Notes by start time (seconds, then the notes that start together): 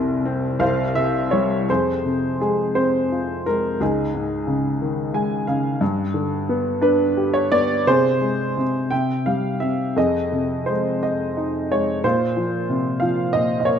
Already playing: C2 C3 G#5 C6
0.25 C4
0.59 C2 C5 F5
0.95 C3 E5
1.31 G3 C#5
1.69 F2 G#4 C5
2.05 C3
2.40 G#3 G#4
2.75 C4 C5
3.12 F4
3.46 G#3 A#4
3.80 C#2 D#4 G#4
4.14 G#2
4.47 C#3
4.82 D#3
5.14 G#3 G#5
5.47 C#3 F5
5.81 G2
6.14 D3
6.49 B3
6.81 D4 B4
7.17 G4
7.34 C#5
7.52 B3 D5
7.87 C3 G#4 C5
8.21 G#3
8.57 C3
8.91 C3 E5 G5
9.26 G3 F5
9.60 C4 E5
9.96 F2 G#4 D#5
10.32 C3
10.66 G#3 C5
11.03 D#5
11.37 D#4
11.72 G#3 C#5
12.04 A#2 F4 C5
12.37 F3
12.70 C3
13.00 F3 F5
13.33 A#2 D#5
13.60 D#5
13.65 A#3 C#5